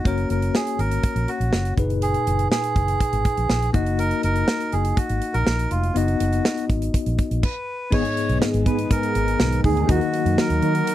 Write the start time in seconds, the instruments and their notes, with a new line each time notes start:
0.04 fingered electric bass F#1, tine electric piano A#3 C#4 F#4 C#5, melodica A#4, kick, closed hi-hat
0.18 closed hi-hat
0.30 fingered electric bass F#1, melodica A#4, closed hi-hat
0.42 closed hi-hat
0.55 melodica G#4, snare
0.67 closed hi-hat
0.79 fingered electric bass G#1, melodica A#4, closed hi-hat
0.91 closed hi-hat
1.03 kick, closed hi-hat
1.16 fingered electric bass A#1, closed hi-hat
1.28 melodica F#4, closed hi-hat
1.40 fingered electric bass A#1, closed hi-hat
1.53 fingered electric bass F#1, snare
1.65 closed hi-hat
1.77 fingered electric bass F#1, tine electric piano A#2 D#4 G#4 B4, kick, closed hi-hat
1.90 closed hi-hat
2.02 melodica G#4, closed hi-hat
2.14 closed hi-hat
2.27 fingered electric bass F#1, closed hi-hat
2.39 closed hi-hat
2.51 melodica G#4, snare
2.64 closed hi-hat
2.76 fingered electric bass F#1, kick, closed hi-hat
2.88 closed hi-hat
3.00 kick, closed hi-hat
3.13 fingered electric bass G#1, closed hi-hat
3.25 kick, closed hi-hat
3.37 fingered electric bass A#1, closed hi-hat
3.50 fingered electric bass A#1, snare
3.62 closed hi-hat
3.73 fingered electric bass F#1, tine electric piano A#3 D#4 F#4 D#5, melodica F#4, kick, closed hi-hat
3.87 closed hi-hat
3.99 melodica A#4, closed hi-hat
4.11 closed hi-hat
4.23 fingered electric bass F#1, melodica A#4, closed hi-hat
4.36 closed hi-hat
4.48 snare
4.60 closed hi-hat
4.72 fingered electric bass F#1, melodica G#4, closed hi-hat
4.85 closed hi-hat
4.97 melodica F#4, kick, closed hi-hat
5.09 fingered electric bass G#1, closed hi-hat
5.22 closed hi-hat
5.34 fingered electric bass A#1, melodica A#4, closed hi-hat
5.47 fingered electric bass A#1, snare
5.59 closed hi-hat
5.71 fingered electric bass F1, melodica F4, closed hi-hat
5.83 closed hi-hat
5.94 fingered electric bass F#1, tine electric piano B3 D#4 F#4 D#5, melodica F#4, closed hi-hat
6.08 closed hi-hat
6.20 fingered electric bass F#1, closed hi-hat
6.33 closed hi-hat
6.45 snare
6.58 closed hi-hat
6.69 fingered electric bass G#1, kick, closed hi-hat
6.82 closed hi-hat
6.94 kick, closed hi-hat
7.06 fingered electric bass A#1, closed hi-hat
7.19 kick, closed hi-hat
7.31 fingered electric bass A#1, closed hi-hat
7.43 melodica B4, kick, crash
7.91 fingered electric bass G#1, tine electric piano G#2 B3 D#4 G#4 D#5, analog synth pad D#3 G#3 B3 G#4, analog polysynth B3 D#4 G#4, melodica C#5, kick, crash
8.05 closed hi-hat
8.17 closed hi-hat
8.29 fingered electric bass B1, closed hi-hat
8.42 snare
8.54 fingered electric bass G#1, closed hi-hat
8.66 fingered electric bass G#2, analog polysynth B3 D#4 G#4, melodica B4, kick, closed hi-hat
8.79 closed hi-hat
8.91 melodica A#4, kick, closed hi-hat
9.03 closed hi-hat
9.15 fingered electric bass G#1, closed hi-hat
9.28 closed hi-hat
9.40 fingered electric bass B1, snare
9.52 closed hi-hat
9.64 fingered electric bass D2, analog polysynth A#3 D#4 G#4, melodica G#4, kick, open hi-hat
9.77 closed hi-hat
9.87 fingered electric bass D#2, tine electric piano D#3 A#3 D#4 F#4 D#5, analog synth pad F#3 A#3 F#4, analog polysynth D#4 F#4 A#4, melodica F#4, kick, closed hi-hat
10.01 closed hi-hat
10.14 closed hi-hat
10.25 fingered electric bass F#2, closed hi-hat
10.38 melodica A#4, snare
10.50 fingered electric bass D#2, closed hi-hat
10.62 fingered electric bass D#3, analog polysynth D#4 F#4 A#4, closed hi-hat
10.75 closed hi-hat
10.87 closed hi-hat